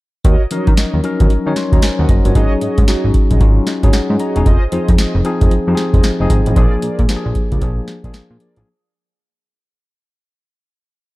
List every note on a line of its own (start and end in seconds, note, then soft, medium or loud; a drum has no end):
0.24 0.36 D#2 loud
0.24 0.42 F#4 medium
0.24 0.43 A#4 medium
0.24 0.43 C#5 medium
0.24 0.43 D#5 loud
0.24 kick loud
0.24 closed hi-hat medium
0.51 0.58 D#3 soft
0.51 0.59 F3 medium
0.51 0.95 C#4 medium
0.51 0.95 D#4 medium
0.51 0.69 F#4 medium
0.51 0.69 A#4 medium
0.51 0.95 A#4 loud
0.51 0.69 C#5 medium
0.51 0.69 D#5 medium
0.51 closed hi-hat medium
0.57 0.98 F#3 medium
0.67 0.74 D#3 medium
0.67 kick loud
0.67 closed hi-hat soft
0.77 0.95 F#4 medium
0.77 0.95 A#4 medium
0.77 0.95 C#5 medium
0.77 0.95 D#5 medium
0.77 snare loud
0.77 closed hi-hat medium
0.94 1.01 D#2 medium
1.04 1.35 F#3 medium
1.04 1.36 C#4 medium
1.04 1.36 D#4 medium
1.04 1.36 A#4 loud
1.04 closed hi-hat medium
1.19 1.27 D#2 medium
1.19 1.32 F#4 medium
1.19 1.32 A#4 medium
1.19 1.33 C#5 medium
1.19 1.33 D#5 medium
1.19 kick medium
1.19 closed hi-hat medium
1.30 1.37 D#3 soft
1.30 closed hi-hat medium
1.46 1.53 D#3 loud
1.46 1.84 F#3 medium
1.46 1.85 C#4 medium
1.46 1.85 D#4 medium
1.46 1.57 C#5 medium
1.56 1.73 D#5 medium
1.56 1.72 C6 medium
1.56 snare medium
1.56 closed hi-hat medium
1.72 1.79 D#2 loud
1.72 1.85 F#4 medium
1.72 1.85 A#4 medium
1.72 1.85 C#5 medium
1.72 1.83 C#5 medium
1.72 1.85 D#5 medium
1.72 1.82 A#5 medium
1.72 kick medium
1.72 closed hi-hat soft
1.82 1.99 C5 medium
1.82 1.99 G#5 medium
1.82 snare loud
1.82 closed hi-hat medium
1.99 2.06 D#2 loud
1.99 2.11 F#4 medium
1.99 2.12 A#4 medium
1.99 2.09 A#4 medium
1.99 2.12 C#5 medium
1.99 2.12 D#5 medium
1.99 2.09 F#5 medium
2.09 2.20 F#1 medium
2.09 2.25 F#4 medium
2.09 2.25 D#5 medium
2.09 kick medium
2.09 closed hi-hat medium
2.25 2.32 G1 loud
2.25 2.51 F4 medium
2.25 2.34 F#4 medium
2.25 2.38 A#4 medium
2.25 2.34 C#5 medium
2.25 2.51 C#5 medium
2.25 2.34 D#5 medium
2.25 closed hi-hat medium
2.35 2.47 G#1 loud
2.35 2.79 F#3 medium
2.35 2.79 C#4 medium
2.35 2.79 D#4 medium
2.35 2.53 F#4 loud
2.35 2.53 G#4 medium
2.35 2.80 G#4 medium
2.35 2.53 C#5 medium
2.35 2.53 D#5 loud
2.35 kick loud
2.35 closed hi-hat medium
2.61 2.68 G#2 soft
2.61 2.79 F#4 medium
2.61 2.80 G#4 medium
2.61 2.80 C#5 medium
2.61 2.80 D#5 medium
2.61 closed hi-hat medium
2.78 2.85 G#2 medium
2.78 kick loud
2.78 closed hi-hat soft
2.88 3.32 F#3 medium
2.88 3.32 C#4 medium
2.88 3.32 D#4 medium
2.88 3.06 F#4 medium
2.88 3.32 F#4 medium
2.88 3.06 G#4 medium
2.88 3.06 C#5 medium
2.88 3.06 D#5 medium
2.88 snare loud
2.88 closed hi-hat medium
3.04 3.11 G#1 medium
3.14 kick medium
3.14 closed hi-hat medium
3.30 3.38 A#1 medium
3.30 3.43 F#4 medium
3.30 3.43 G#4 medium
3.30 3.43 C#5 medium
3.30 3.43 D#5 medium
3.30 kick medium
3.30 closed hi-hat medium
3.40 3.59 G#1 medium
3.40 3.72 F#3 medium
3.40 3.72 C#4 medium
3.40 3.73 D#4 medium
3.40 3.73 F4 loud
3.40 kick medium
3.40 closed hi-hat medium
3.67 3.92 D#5 medium
3.67 snare medium
3.67 closed hi-hat medium
3.83 3.90 G#1 medium
3.83 4.21 F#3 medium
3.83 4.21 C#4 medium
3.83 4.22 D#4 medium
3.83 3.96 F#4 medium
3.83 3.96 G#4 medium
3.83 4.22 G#4 loud
3.83 3.96 C#5 medium
3.83 3.96 D#5 medium
3.83 kick medium
3.83 closed hi-hat soft
3.93 4.18 F#5 medium
3.93 snare loud
3.93 closed hi-hat medium
4.10 4.17 G#2 loud
4.19 4.37 F#4 medium
4.19 4.37 G#4 medium
4.19 4.38 C#5 medium
4.19 4.38 D#5 medium
4.19 4.44 A#5 medium
4.19 closed hi-hat medium
4.36 4.43 E1 loud
4.36 4.46 F#3 medium
4.36 4.46 C#4 medium
4.36 4.46 D#4 medium
4.36 4.46 G#4 medium
4.36 closed hi-hat medium
4.45 4.57 F1 loud
4.45 4.64 F4 loud
4.45 4.64 G#4 medium
4.45 4.64 C5 medium
4.45 4.64 D#5 loud
4.45 kick loud
4.45 closed hi-hat medium
4.72 4.79 F2 medium
4.72 5.16 F3 medium
4.72 5.16 C4 medium
4.72 5.16 D#4 medium
4.72 4.90 F4 medium
4.72 4.90 G#4 medium
4.72 5.16 G#4 medium
4.72 4.90 C5 medium
4.72 4.90 D#5 medium
4.72 closed hi-hat medium
4.88 4.95 F2 medium
4.88 kick medium
4.88 closed hi-hat medium
4.98 5.16 F4 medium
4.98 5.16 G#4 medium
4.98 5.16 C5 medium
4.98 5.16 D#5 medium
4.98 snare loud
4.98 closed hi-hat medium
5.15 5.22 F1 medium
5.25 5.57 F3 loud
5.25 5.57 C4 medium
5.25 5.57 D#4 medium
5.25 5.57 G#4 loud
5.25 closed hi-hat medium
5.40 5.48 F1 medium
5.40 5.53 F4 medium
5.40 5.53 G#4 medium
5.40 5.54 C5 medium
5.40 5.54 D#5 medium
5.40 kick medium
5.40 closed hi-hat medium
5.51 5.58 F2 soft
5.51 closed hi-hat medium
5.67 5.75 F2 loud
5.67 6.06 F3 medium
5.67 6.06 C4 medium
5.67 6.06 D#4 medium
5.67 5.73 G4 medium
5.75 6.09 G#4 loud
5.75 snare medium
5.75 closed hi-hat medium
5.93 6.01 F1 medium
5.93 6.06 F4 medium
5.93 6.06 G#4 medium
5.93 6.06 C5 medium
5.93 6.06 D#5 medium
5.93 kick medium
5.93 closed hi-hat soft
6.03 snare loud
6.03 closed hi-hat medium
6.19 6.27 F1 loud
6.19 6.50 F3 medium
6.19 6.50 C4 medium
6.19 6.50 D#4 medium
6.19 6.32 F4 medium
6.19 6.32 G#4 medium
6.19 6.50 G#4 loud
6.19 6.33 C5 medium
6.19 6.33 D#5 medium
6.30 6.41 G#1 medium
6.30 kick medium
6.30 closed hi-hat medium
6.46 6.54 A1 medium
6.46 6.55 F4 medium
6.46 6.55 G#4 medium
6.46 6.59 C5 medium
6.46 6.59 D#5 medium
6.46 closed hi-hat medium
6.56 6.68 A#1 loud
6.56 7.00 F3 medium
6.56 7.00 A#3 medium
6.56 7.00 D4 medium
6.56 6.74 F4 loud
6.56 6.74 G#4 medium
6.56 7.01 G#4 loud
6.56 6.74 A#4 medium
6.56 6.74 D5 loud
6.56 kick loud
6.56 closed hi-hat medium
6.82 6.89 A#2 soft
6.82 7.00 F4 medium
6.82 7.00 G#4 medium
6.82 7.01 A#4 medium
6.82 7.01 D5 medium
6.82 closed hi-hat medium
6.99 7.06 A#2 medium
6.99 kick loud
6.99 closed hi-hat soft
7.08 7.53 F3 medium
7.08 7.53 A#3 medium
7.08 7.53 D4 medium
7.08 7.27 F4 medium
7.08 7.17 G4 medium
7.08 7.27 G#4 medium
7.08 7.27 A#4 medium
7.08 7.27 D5 medium
7.08 snare loud
7.08 closed hi-hat medium
7.16 7.56 G#4 medium
7.26 7.32 A#1 medium
7.35 kick medium
7.35 closed hi-hat medium
7.51 7.59 C#2 medium
7.51 7.64 F4 medium
7.51 7.64 G#4 medium
7.51 7.64 A#4 medium
7.51 7.64 D5 medium
7.51 kick medium
7.51 closed hi-hat medium
7.61 7.80 A#1 medium
7.61 7.93 F3 medium
7.61 7.93 A#3 medium
7.61 7.94 D4 medium
7.61 7.94 G#4 medium
7.61 kick loud
7.61 closed hi-hat medium
7.88 snare medium
7.88 closed hi-hat medium
8.04 8.11 A#1 medium
8.04 8.42 F3 medium
8.04 8.42 A#3 medium
8.04 8.43 D4 medium
8.04 8.17 F4 medium
8.04 8.17 G#4 medium
8.04 8.43 G#4 loud
8.04 8.17 A#4 medium
8.04 8.17 D5 medium
8.04 kick medium
8.04 closed hi-hat soft
8.14 snare loud
8.14 closed hi-hat medium
8.30 8.37 A#2 medium
8.40 8.58 F4 medium
8.40 8.58 G#4 medium
8.40 8.58 A#4 medium
8.40 8.59 D5 medium
8.40 closed hi-hat medium
8.56 8.64 A1 medium
8.56 8.67 F3 medium
8.56 8.67 A#3 medium
8.56 8.67 D4 medium
8.56 8.67 G#4 medium
8.56 closed hi-hat medium